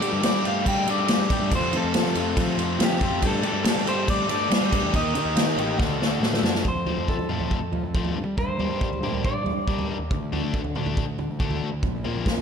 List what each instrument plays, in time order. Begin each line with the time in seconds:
Already playing: clean electric guitar D5
0.01 distorted electric guitar G3 A3 D4 G4, picked electric bass G3, ride
0.13 picked electric bass G2
0.22 distorted electric guitar G3 A3 D4 G4, picked electric bass G3, clean electric guitar D5, snare, ride
0.43 picked electric bass G2, distorted electric guitar G3 A3 D4 G4, ride
0.48 clean electric guitar F5
0.66 distorted electric guitar G3 A3 D4 G4, picked electric bass G3, clean electric guitar G5, kick, ride
0.87 picked electric bass G2, distorted electric guitar G3 A3 D4 G4, clean electric guitar D5, ride
1.08 distorted electric guitar G3 A3 D4 G4, picked electric bass G3, snare, ride
1.30 picked electric bass G2, distorted electric guitar G3 A3 D4 G4, kick, ride
1.41 picked electric bass G2
1.51 picked electric bass F2, distorted electric guitar F2 C3 F3 A3 C4, kick, ride
1.55 distorted electric guitar F4, clean electric guitar C5
1.73 distorted electric guitar F2 C3 F3 A3 C4 F4, picked electric bass F3, ride
1.77 clean electric guitar A4
1.84 picked electric bass F2
1.94 distorted electric guitar F2 C3 F3 A3 C4 F4, picked electric bass F3, snare, ride
2.06 snare
2.15 picked electric bass F2, distorted electric guitar F2 C3 F3 A3 C4, ride
2.20 distorted electric guitar F4
2.37 distorted electric guitar F2 C3 F3 A3 C4 F4, picked electric bass F3, kick, ride
2.57 distorted electric guitar F2 C3 F3 A3 C4 F4, picked electric bass F2, ride
2.79 distorted electric guitar F2 C3 F3 A3 C4 F4, picked electric bass F3, snare, ride
2.85 clean electric guitar G4
3.00 distorted electric guitar F2 C3 F3 A3 C4 F4, picked electric bass F2, kick, ride
3.12 picked electric bass F2
3.21 picked electric bass G2, distorted electric guitar G3 A3 D4 G4, kick, ride
3.27 clean electric guitar A4
3.43 picked electric bass G3, distorted electric guitar G3 A3 D4 G4, ride
3.47 clean electric guitar A4
3.53 picked electric bass G2
3.65 distorted electric guitar G3 A3 D4 G4, picked electric bass G3, snare, ride
3.77 snare
3.86 picked electric bass G2, distorted electric guitar G3 A3 D4 G4, clean electric guitar C5, ride
4.08 distorted electric guitar G3 A3 D4 G4, picked electric bass G3, clean electric guitar D5, kick, ride
4.29 picked electric bass G2, distorted electric guitar G3 A3 D4 G4, clean electric guitar D5, ride
4.50 picked electric bass G3, distorted electric guitar G3 A3 D4, snare, ride
4.54 distorted electric guitar G4
4.72 picked electric bass G2, distorted electric guitar G3 A3 D4 G4, kick, ride
4.83 picked electric bass E2
4.93 picked electric bass D#2, distorted electric guitar D#3 A#3 D#4 G4, clean electric guitar D#5, kick, ride
5.14 distorted electric guitar D#3 A#3 D#4 G4, picked electric bass D#3, ride
5.25 picked electric bass D#2
5.36 picked electric bass D#3, distorted electric guitar D#3 A#3 D#4 G4, synth bell F5, snare, ride
5.57 picked electric bass A1, distorted electric guitar D#3 A#3 D#4 G4, synth bell G5, ride
5.78 picked electric bass D2, distorted electric guitar D3 A3 D4 F#4, synth bell F#5, kick, snare
5.99 picked electric bass D2, distorted electric guitar D3 A3 D4 F#4, snare
6.20 picked electric bass A2, distorted electric guitar D3 A3 D4, snare
6.25 distorted electric guitar F#4
6.34 snare
6.43 picked electric bass F#2, distorted electric guitar D3 A3 D4 F#4, synth bell A5, snare
6.55 snare
6.65 picked electric bass F2, clean electric guitar C5, kick, floor tom
6.86 picked electric bass F3, distorted electric guitar F3 A3 C4 F4, floor tom
6.98 picked electric bass F2
7.08 picked electric bass F3, clean electric guitar A4, kick
7.19 floor tom
7.29 picked electric bass F2, distorted electric guitar F3 A3 C4 F4, mid tom
7.40 picked electric bass F3, floor tom
7.51 picked electric bass F2, kick
7.72 picked electric bass F3, floor tom
7.83 picked electric bass F2
7.94 picked electric bass F3, distorted electric guitar F3 A3 C4 F4, kick
8.04 floor tom
8.16 picked electric bass G2
8.25 picked electric bass G3
8.37 picked electric bass G2, clean electric guitar C5, kick, floor tom
8.58 picked electric bass G3, distorted electric guitar G3 A#3 D4 G4, floor tom
8.70 picked electric bass G2
8.81 picked electric bass G3, kick
8.93 floor tom
9.01 picked electric bass G2, distorted electric guitar A#3 D4 G4, mid tom
9.05 distorted electric guitar G3
9.12 picked electric bass G3, floor tom
9.25 picked electric bass G2, clean electric guitar D5, kick
9.44 picked electric bass G3, floor tom
9.53 picked electric bass G2
9.67 picked electric bass G3, distorted electric guitar G3 A#3 D4 G4, kick
9.79 floor tom
9.88 picked electric bass G2
9.99 picked electric bass D#2
10.11 picked electric bass D2, kick, floor tom
10.32 distorted electric guitar D3 A3 D4 F#4, picked electric bass D3, floor tom
10.44 picked electric bass D2
10.54 picked electric bass D3, kick
10.64 floor tom
10.75 picked electric bass D2, distorted electric guitar D3 A3 D4 F#4, mid tom
10.86 picked electric bass D3, floor tom
10.97 picked electric bass D2, kick
11.18 picked electric bass D3, floor tom
11.31 picked electric bass D2
11.39 distorted electric guitar D3 A3 D4 F#4, picked electric bass D3, kick
11.50 floor tom
11.63 picked electric bass D2
11.73 picked electric bass D2
11.83 picked electric bass A#1, kick, floor tom
12.04 picked electric bass A#2, distorted electric guitar F3 A#3 C4 F4, floor tom
12.15 picked electric bass A#1
12.26 picked electric bass A#2, kick, snare
12.37 floor tom